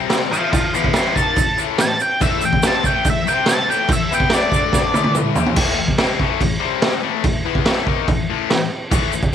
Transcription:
0.00 0.32 C3 medium
0.00 0.33 G3 medium
0.00 0.33 C4 loud
0.10 snare loud
0.10 crash medium
0.10 shaker medium
0.32 0.52 A2 medium
0.32 0.53 E3 medium
0.32 0.54 A3 loud
0.32 0.51 C5 medium
0.32 0.52 A5 medium
0.32 shaker medium
0.52 0.71 A2 medium
0.52 0.71 E3 medium
0.52 0.73 C5 medium
0.52 0.73 A5 medium
0.52 kick loud
0.52 crash medium
0.52 shaker medium
0.75 0.95 E3 loud
0.75 0.96 B3 medium
0.75 0.96 E4 medium
0.75 0.95 A5 medium
0.75 0.96 C6 medium
0.75 shaker medium
0.84 kick medium
0.93 1.16 A2 medium
0.93 1.17 E3 loud
0.93 1.14 A5 medium
0.93 snare loud
0.93 crash medium
0.93 shaker medium
0.97 1.17 A3 loud
0.97 1.17 C6 medium
1.15 1.37 D#3 loud
1.15 1.38 A#3 loud
1.15 1.38 D#4 loud
1.15 1.57 A5 loud
1.15 kick medium
1.15 shaker medium
1.36 1.55 A2 medium
1.36 1.56 E3 medium
1.36 kick loud
1.36 crash medium
1.36 shaker medium
1.57 1.78 A2 medium
1.57 1.78 E3 medium
1.57 1.79 A3 loud
1.57 shaker medium
1.78 1.97 A2 medium
1.78 1.97 E3 medium
1.78 2.01 A5 loud
1.78 snare loud
1.78 crash medium
1.78 shaker loud
2.00 2.22 G5 loud
2.00 shaker medium
2.21 2.42 A2 loud
2.21 2.42 E3 loud
2.21 2.42 A3 loud
2.21 2.42 E5 loud
2.21 kick loud
2.21 crash medium
2.21 shaker medium
2.41 2.61 A2 medium
2.41 2.61 E3 medium
2.41 2.65 G5 medium
2.41 shaker medium
2.53 kick medium
2.63 2.85 C3 loud
2.63 2.85 G3 loud
2.63 2.86 C4 loud
2.63 snare loud
2.63 crash medium
2.63 shaker loud
2.67 2.86 A5 loud
2.84 3.06 A2 loud
2.84 3.06 E3 loud
2.84 3.06 A3 loud
2.84 3.06 G5 loud
2.84 kick medium
2.84 shaker medium
3.05 3.27 A2 medium
3.05 3.27 E3 medium
3.05 kick loud
3.05 crash medium
3.05 shaker medium
3.10 3.28 E5 medium
3.27 3.68 C3 loud
3.27 3.68 G3 loud
3.27 3.68 C4 medium
3.27 3.48 G5 loud
3.27 shaker medium
3.46 3.69 A5 loud
3.46 snare loud
3.46 crash medium
3.46 shaker medium
3.68 3.89 A2 medium
3.68 3.89 E3 loud
3.68 3.89 A3 loud
3.68 3.90 G5 medium
3.68 shaker medium
3.89 4.07 A2 medium
3.89 4.07 E3 medium
3.89 kick loud
3.89 crash medium
3.89 shaker medium
3.93 4.12 E5 medium
4.11 4.31 E3 medium
4.11 4.32 B3 loud
4.11 4.32 E4 loud
4.11 4.33 G5 loud
4.11 shaker medium
4.20 kick medium
4.30 4.52 A2 loud
4.30 4.52 E3 loud
4.30 4.52 A3 loud
4.30 snare loud
4.30 crash medium
4.30 shaker medium
4.34 5.14 D5 loud
4.52 4.93 D3 medium
4.52 4.94 A3 loud
4.52 4.94 D4 loud
4.52 kick medium
4.52 shaker medium
4.72 kick loud
4.72 snare medium
4.72 shaker medium
4.93 5.35 A2 medium
4.93 5.36 E3 medium
4.93 5.36 A3 loud
4.93 high tom medium
4.93 shaker medium
5.04 high tom medium
5.15 mid tom medium
5.15 shaker medium
5.35 5.56 C3 medium
5.35 5.57 G3 loud
5.35 5.57 C4 medium
5.35 floor tom loud
5.35 shaker medium
5.46 floor tom loud
5.56 5.77 A2 medium
5.56 5.77 E3 loud
5.56 5.78 A3 loud
5.56 kick loud
5.56 crash loud
5.56 crash medium
5.78 5.95 A2 medium
5.78 5.95 E3 medium
5.88 kick medium
5.98 6.19 C3 medium
5.98 6.20 G3 loud
5.98 6.20 C4 loud
5.98 snare loud
5.98 crash medium
6.20 6.39 A2 medium
6.20 6.39 E3 loud
6.20 6.41 A3 loud
6.20 kick medium
6.41 6.58 A2 medium
6.41 6.58 E3 medium
6.41 kick loud
6.41 crash medium
6.60 7.02 C3 medium
6.60 7.02 G3 medium
6.60 7.03 C4 loud
6.82 snare loud
6.82 crash medium
7.02 7.22 A2 medium
7.02 7.22 E3 medium
7.02 7.24 A3 loud
7.23 7.41 A2 medium
7.23 7.41 E3 medium
7.23 kick loud
7.23 crash medium
7.45 7.65 E3 loud
7.45 7.66 B3 loud
7.45 7.66 E4 loud
7.55 kick medium
7.66 7.86 A2 loud
7.66 7.87 E3 loud
7.66 7.87 A3 loud
7.66 snare loud
7.66 crash medium
7.87 8.08 D#3 loud
7.87 8.08 A#3 loud
7.87 8.08 D#4 loud
7.87 kick medium
8.08 8.26 A2 medium
8.08 8.26 E3 medium
8.08 kick loud
8.08 crash medium
8.30 8.50 A2 medium
8.30 8.49 E3 loud
8.30 8.50 A3 loud
8.50 8.67 A2 medium
8.50 8.67 E3 medium
8.50 snare loud
8.50 crash medium
8.91 9.12 A2 loud
8.91 9.12 E3 loud
8.91 9.13 A3 loud
8.91 kick loud
8.91 crash medium
8.91 shaker medium
9.12 9.30 A2 medium
9.12 9.30 E3 medium
9.12 shaker medium
9.22 kick medium
9.22 shaker soft

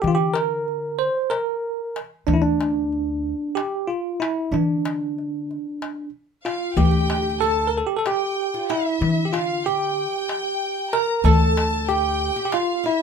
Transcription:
0.02 1.08 D3 medium
0.02 0.10 G4 medium
0.02 darbuka dum medium
0.07 0.16 F4 medium
0.15 0.35 G4 medium
0.34 1.01 A#4 medium
0.34 darbuka tek medium
0.68 darbuka ka soft
0.99 1.32 C5 medium
1.30 1.99 A#4 medium
1.30 darbuka tek medium
1.96 darbuka tek medium
2.27 3.32 D2 medium
2.27 2.35 D4 medium
2.27 darbuka dum medium
2.34 2.42 E4 medium
2.42 3.60 D4 medium
2.61 darbuka tek medium
2.92 darbuka ka soft
3.55 3.89 G4 medium
3.55 darbuka tek medium
3.88 4.21 F4 medium
4.20 4.53 E4 medium
4.20 darbuka tek medium
4.51 5.56 D3 medium
4.51 6.09 D4 medium
4.51 darbuka dum medium
4.85 darbuka tek medium
5.18 darbuka ka soft
5.51 darbuka ka soft
5.82 darbuka tek medium
6.45 6.78 F4 medium
6.45 6.77 F4 medium
6.45 6.75 F5 medium
6.45 darbuka tek medium
6.77 7.81 D2 loud
6.77 7.43 G4 medium
6.77 6.84 G4 medium
6.77 7.42 G5 medium
6.77 darbuka dum medium
6.85 6.90 G4 medium
6.91 6.99 G4 medium
7.00 7.07 G4 medium
7.08 7.14 G4 medium
7.08 darbuka tek medium
7.15 7.21 G4 medium
7.22 7.28 G4 medium
7.30 7.37 G4 medium
7.41 7.69 A4 loud
7.41 7.67 A4 medium
7.41 7.68 A5 medium
7.41 darbuka ka soft
7.67 7.77 A#4 medium
7.78 7.87 A4 medium
7.87 7.96 G4 medium
7.96 7.98 A4 medium
7.96 8.05 A4 medium
8.06 8.54 G4 medium
8.06 8.72 G4 medium
8.06 8.65 G5 medium
8.06 darbuka tek medium
8.54 8.70 F4 medium
8.69 9.35 E4 medium
8.69 9.23 E4 medium
8.69 9.34 E5 medium
8.69 darbuka tek medium
9.01 10.05 D3 medium
9.01 darbuka dum medium
9.25 9.33 G4 medium
9.33 9.66 F4 medium
9.33 9.65 F5 medium
9.33 darbuka tek medium
9.65 10.97 G4 medium
9.65 11.25 G4 medium
9.65 10.93 G5 medium
9.65 darbuka ka soft
10.29 darbuka tek medium
10.93 11.26 A#4 loud
10.93 11.17 A#5 medium
10.93 darbuka tek medium
11.18 11.25 A#5 medium
11.24 12.28 D2 loud
11.24 11.91 A4 loud
11.24 11.89 A4 medium
11.24 11.89 A5 medium
11.24 darbuka dum medium
11.57 darbuka tek medium
11.89 12.44 G4 loud
11.89 12.35 G4 medium
11.89 12.53 G5 medium
11.89 darbuka ka soft
12.36 12.51 G4 medium
12.45 12.53 G4 medium
12.52 12.85 F4 medium
12.52 12.86 F4 medium
12.52 12.85 F5 medium
12.52 darbuka tek medium
12.84 13.02 E4 medium
12.84 13.02 E5 medium

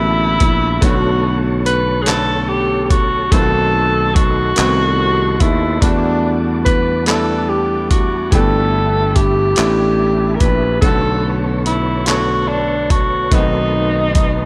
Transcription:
0.00 0.37 A1 medium
0.00 0.81 D3 medium
0.00 0.80 G3 medium
0.00 0.84 G3 medium
0.00 0.82 A3 medium
0.00 0.84 A#3 soft
0.00 0.83 B3 medium
0.00 0.83 E4 medium
0.00 0.85 E4 loud
0.00 0.36 F#4 medium
0.00 0.80 E5 medium
0.00 13.28 A5 medium
0.00 0.80 B5 medium
0.40 0.79 A#1 medium
0.40 kick medium
0.40 closed hi-hat medium
0.81 3.28 B1 loud
0.81 1.59 D3 medium
0.81 1.60 A3 medium
0.81 1.60 B3 medium
0.81 1.61 C#4 medium
0.81 1.39 F#4 loud
0.81 5.78 A4 medium
0.81 3.30 C#5 medium
0.81 3.30 C#6 medium
0.81 kick loud
0.81 closed hi-hat medium
0.85 1.61 F#4 medium
1.66 2.03 B4 loud
1.66 closed hi-hat medium
2.02 2.08 G#4 medium
2.06 2.85 D3 medium
2.06 2.85 A3 medium
2.06 2.85 B3 medium
2.06 2.86 C#4 medium
2.06 2.42 A4 loud
2.06 2.86 A4 medium
2.06 clap loud
2.06 closed hi-hat medium
2.42 2.50 A4 medium
2.49 2.83 G4 loud
2.84 2.92 G4 medium
2.90 3.33 F#4 loud
2.90 kick loud
2.90 closed hi-hat medium
3.31 4.53 B1 loud
3.31 4.10 D#3 medium
3.31 4.10 A3 medium
3.31 4.10 B3 medium
3.31 4.11 C4 medium
3.31 4.16 A4 loud
3.31 5.80 D#5 medium
3.31 5.80 C6 medium
3.31 kick loud
3.31 closed hi-hat medium
3.35 3.40 F4 medium
3.42 4.15 F#4 medium
4.15 5.41 F#4 loud
4.15 kick loud
4.15 closed hi-hat medium
4.56 5.37 C2 loud
4.56 5.34 D#3 medium
4.56 5.35 A3 medium
4.56 5.36 B3 medium
4.56 5.36 C4 medium
4.56 clap loud
4.56 closed hi-hat medium
4.60 5.37 F#4 medium
5.40 5.79 D#2 medium
5.40 5.83 E4 loud
5.40 kick medium
5.40 closed hi-hat medium
5.81 8.34 E2 loud
5.81 6.59 G3 medium
5.81 8.30 G3 medium
5.81 6.60 A3 medium
5.81 6.60 B3 medium
5.81 6.38 D4 medium
5.81 6.61 D4 medium
5.81 8.30 F#5 medium
5.81 8.30 D6 medium
5.81 kick loud
5.81 closed hi-hat medium
5.85 6.61 F#4 medium
6.65 7.04 B4 loud
6.65 kick medium
6.65 closed hi-hat medium
7.06 7.84 G3 medium
7.06 7.85 A3 medium
7.06 7.85 B3 medium
7.06 7.86 D4 medium
7.06 7.86 E4 medium
7.06 7.50 A4 loud
7.06 clap loud
7.06 closed hi-hat medium
7.49 7.90 G4 medium
7.91 8.34 F#4 medium
7.91 kick medium
7.91 closed hi-hat medium
8.31 9.53 G1 loud
8.31 9.09 E3 medium
8.31 9.10 A3 medium
8.31 9.10 B3 medium
8.31 9.11 D4 medium
8.31 10.80 G4 medium
8.31 9.17 A4 loud
8.31 10.80 E5 medium
8.31 10.80 B5 medium
8.31 kick loud
8.31 closed hi-hat medium
8.35 9.11 G4 medium
9.15 10.36 G4 loud
9.15 kick medium
9.15 closed hi-hat medium
9.56 10.37 A1 medium
9.56 10.34 E3 medium
9.56 10.35 A3 medium
9.56 10.36 B3 medium
9.56 10.36 D4 medium
9.56 10.36 E4 medium
9.56 clap loud
9.56 closed hi-hat medium
10.35 10.41 A#4 medium
10.40 10.79 A#1 medium
10.40 10.80 B4 loud
10.40 kick loud
10.40 closed hi-hat medium
10.81 13.29 B1 loud
10.81 10.88 C#3 medium
10.81 11.60 A3 medium
10.81 11.60 B3 medium
10.81 11.61 C#4 medium
10.81 11.34 A4 loud
10.81 13.29 B4 medium
10.81 13.30 C#5 medium
10.81 13.30 C#6 medium
10.81 kick loud
10.81 closed hi-hat medium
10.85 11.63 D3 medium
10.85 11.61 F#4 medium
11.66 12.08 E4 medium
11.66 closed hi-hat medium
12.06 12.84 D3 medium
12.06 12.85 A3 medium
12.06 12.85 B3 medium
12.06 12.49 F#4 loud
12.06 12.86 C#5 medium
12.06 clap loud
12.06 closed hi-hat medium
12.10 12.87 A4 medium
12.48 12.92 D4 medium
12.90 13.35 F#4 loud
12.90 kick medium
12.90 closed hi-hat medium
13.31 14.46 B1 loud
13.31 14.09 D#3 medium
13.31 14.10 A3 medium
13.31 14.11 B3 medium
13.31 14.11 C4 medium
13.31 14.46 D#4 loud
13.31 14.46 B4 medium
13.31 14.46 D#5 medium
13.31 14.46 A5 medium
13.31 14.46 C6 medium
13.31 kick loud
13.31 closed hi-hat medium
13.35 14.11 F#4 medium
14.15 kick loud
14.15 closed hi-hat medium

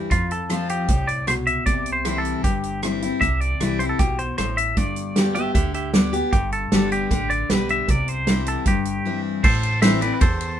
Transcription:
0.11 0.77 F2 medium
0.11 0.85 F2 medium
0.11 0.31 F4 medium
0.11 kick medium
0.11 closed hi-hat medium
0.31 0.70 A4 medium
0.31 closed hi-hat medium
0.49 0.87 F3 medium
0.49 0.87 A3 medium
0.49 0.88 C4 medium
0.49 0.88 F4 medium
0.49 cross-stick medium
0.49 closed hi-hat medium
0.69 1.10 G4 medium
0.69 closed hi-hat medium
0.88 1.54 C2 medium
0.88 1.26 A2 medium
0.88 kick loud
0.88 closed hi-hat medium
1.08 1.28 D5 medium
1.08 closed hi-hat medium
1.27 1.64 B2 medium
1.27 1.33 C5 medium
1.27 cross-stick loud
1.27 closed hi-hat medium
1.47 1.66 E5 medium
1.47 closed hi-hat medium
1.66 2.32 C2 medium
1.66 2.40 C3 medium
1.66 1.90 D5 loud
1.66 kick medium
1.66 closed hi-hat medium
1.86 closed hi-hat medium
1.92 2.19 C5 medium
2.05 2.42 E3 medium
2.05 2.42 G3 medium
2.05 2.43 C4 medium
2.05 2.43 E4 medium
2.05 cross-stick medium
2.05 closed hi-hat medium
2.18 2.44 A4 medium
2.25 closed hi-hat medium
2.44 3.10 G1 medium
2.44 3.18 G2 medium
2.44 2.80 G4 medium
2.44 kick loud
2.44 closed hi-hat medium
2.63 closed hi-hat medium
2.82 3.01 E3 soft
2.82 3.02 G3 soft
2.82 3.02 C4 medium
2.82 3.01 E4 medium
2.82 cross-stick loud
2.82 closed hi-hat medium
3.02 3.22 C4 soft
3.02 3.21 E4 medium
3.02 closed hi-hat medium
3.21 3.55 C2 medium
3.21 3.96 C3 medium
3.21 3.41 E5 loud
3.21 kick medium
3.21 closed hi-hat medium
3.41 3.81 D5 medium
3.41 closed hi-hat medium
3.61 3.94 C2 medium
3.61 3.79 E3 medium
3.61 3.80 G3 soft
3.61 3.80 C4 medium
3.61 3.79 E4 medium
3.61 cross-stick medium
3.61 closed hi-hat medium
3.79 4.00 C4 soft
3.79 3.99 E4 soft
3.79 3.84 C5 medium
3.79 closed hi-hat medium
3.89 4.00 A4 medium
3.99 4.33 B1 medium
3.99 4.37 B2 medium
3.99 4.20 G4 medium
3.99 kick loud
3.99 closed hi-hat medium
4.19 4.37 C5 medium
4.19 closed hi-hat medium
4.38 4.71 A1 medium
4.38 4.76 A2 medium
4.38 4.58 C5 medium
4.38 cross-stick loud
4.38 closed hi-hat medium
4.57 4.77 E5 medium
4.57 closed hi-hat medium
4.77 5.43 G1 medium
4.77 5.51 G2 medium
4.77 5.36 D5 medium
4.77 kick medium
4.77 closed hi-hat medium
4.96 closed hi-hat medium
5.16 5.35 D3 medium
5.16 5.35 G3 medium
5.16 5.35 B3 soft
5.16 5.34 G4 medium
5.16 snare medium
5.16 closed hi-hat medium
5.35 5.55 B3 soft
5.35 5.53 G4 medium
5.35 5.54 G4 medium
5.35 5.54 E5 medium
5.35 closed hi-hat medium
5.54 6.21 D2 medium
5.54 5.93 D3 medium
5.54 5.73 G4 medium
5.54 5.74 E5 medium
5.54 kick loud
5.54 closed hi-hat medium
5.74 5.93 G4 medium
5.74 5.93 E5 medium
5.74 closed hi-hat medium
5.94 6.13 D3 soft
5.94 6.13 G3 soft
5.94 6.13 B3 medium
5.94 6.12 G4 medium
5.94 6.13 D5 medium
5.94 snare loud
5.94 closed hi-hat medium
6.13 6.33 B3 soft
6.13 6.32 G4 medium
6.13 closed hi-hat medium
6.33 6.66 G1 medium
6.33 7.07 G2 medium
6.33 6.52 G4 medium
6.33 kick loud
6.33 closed hi-hat medium
6.52 6.92 A4 medium
6.52 closed hi-hat medium
6.72 7.05 G1 medium
6.72 7.09 D3 medium
6.72 7.09 G3 medium
6.72 7.10 B3 medium
6.72 7.10 G4 medium
6.72 snare medium
6.72 closed hi-hat medium
6.92 7.32 G4 medium
6.92 closed hi-hat medium
7.11 7.44 A1 medium
7.11 7.49 D3 medium
7.11 kick loud
7.11 closed hi-hat medium
7.30 7.50 D5 medium
7.30 closed hi-hat medium
7.50 7.83 B1 medium
7.50 7.87 D3 medium
7.50 7.87 G3 medium
7.50 7.87 B3 soft
7.50 7.87 G4 medium
7.50 7.70 B4 medium
7.50 snare loud
7.50 closed hi-hat medium
7.69 7.90 E5 medium
7.69 closed hi-hat medium
7.88 8.54 C2 medium
7.88 8.62 C3 medium
7.88 8.09 D5 loud
7.88 kick medium
7.88 closed hi-hat medium
8.08 8.48 C5 medium
8.08 closed hi-hat medium
8.27 8.64 E3 medium
8.27 8.65 G3 medium
8.27 8.65 C4 medium
8.27 8.65 E4 medium
8.27 snare medium
8.27 closed hi-hat medium
8.46 8.66 A4 medium
8.46 closed hi-hat medium
8.66 8.99 G1 medium
8.66 9.40 G2 medium
8.66 9.21 G4 medium
8.66 kick loud
8.66 closed hi-hat medium
8.85 closed hi-hat medium
9.05 9.42 E3 soft
9.05 9.42 G3 soft
9.05 9.43 C4 medium
9.05 9.43 E4 medium
9.44 10.09 A1 loud
9.44 10.18 A2 medium
9.44 9.80 A4 medium
9.44 9.81 C5 medium
9.44 kick loud
9.44 crash loud
9.63 ride medium
9.82 10.01 E3 medium
9.82 10.01 A3 medium
9.82 10.02 C4 medium
9.82 10.00 E4 medium
9.82 10.01 C5 medium
9.82 10.01 E5 medium
9.82 snare loud
9.82 ride medium
10.01 10.21 C4 soft
10.01 10.20 E4 medium
10.01 10.13 B4 medium
10.01 10.15 D5 medium
10.01 ride medium
10.14 10.21 B4 medium
10.21 10.60 E2 medium
10.21 10.60 A4 medium
10.21 10.60 C5 medium
10.21 kick loud
10.21 ride medium
10.41 ride medium

